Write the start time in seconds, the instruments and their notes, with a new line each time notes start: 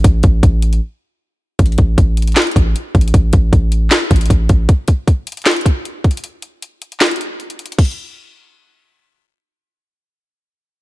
0.04 808-style bass A1, kick, closed hi-hat
0.23 808-style bass A1, kick, closed hi-hat
0.43 808-style bass A1, kick, closed hi-hat
0.62 closed hi-hat
0.73 closed hi-hat
1.59 808-style bass A1, kick, closed hi-hat
1.66 closed hi-hat
1.72 closed hi-hat
1.78 808-style bass A1, kick, closed hi-hat
1.98 808-style bass A1, kick, closed hi-hat
2.17 closed hi-hat
2.22 closed hi-hat
2.27 closed hi-hat
2.32 clap, closed hi-hat
2.37 snare, closed hi-hat
2.42 closed hi-hat
2.47 closed hi-hat
2.51 closed hi-hat
2.56 808-style bass A1, kick, closed hi-hat
2.76 closed hi-hat
2.95 808-style bass A1, kick, closed hi-hat
3.01 closed hi-hat
3.08 closed hi-hat
3.14 808-style bass A1, kick, closed hi-hat
3.33 808-style bass A1, kick, closed hi-hat
3.53 808-style bass A1, kick, closed hi-hat
3.72 closed hi-hat
3.91 snare, clap, closed hi-hat
4.11 808-style bass A1, kick, closed hi-hat
4.16 closed hi-hat
4.21 closed hi-hat
4.26 closed hi-hat
4.30 808-style bass A1, kick, closed hi-hat
4.49 808-style bass A1, kick, closed hi-hat
4.69 kick, closed hi-hat
4.88 kick, closed hi-hat
5.08 kick, closed hi-hat
5.27 closed hi-hat
5.32 closed hi-hat
5.37 closed hi-hat
5.42 clap, closed hi-hat
5.46 snare, closed hi-hat
5.51 closed hi-hat
5.56 closed hi-hat
5.61 closed hi-hat
5.66 kick, closed hi-hat
5.85 closed hi-hat
6.04 kick, closed hi-hat
6.11 closed hi-hat
6.17 closed hi-hat
6.24 closed hi-hat
6.42 closed hi-hat
6.62 closed hi-hat
6.82 closed hi-hat
6.92 closed hi-hat
7.00 snare, clap, closed hi-hat
7.06 closed hi-hat
7.11 closed hi-hat
7.16 closed hi-hat
7.21 closed hi-hat
7.40 closed hi-hat
7.50 closed hi-hat
7.59 closed hi-hat
7.66 closed hi-hat
7.72 closed hi-hat
7.79 kick, closed hi-hat, crash
7.85 closed hi-hat
7.91 closed hi-hat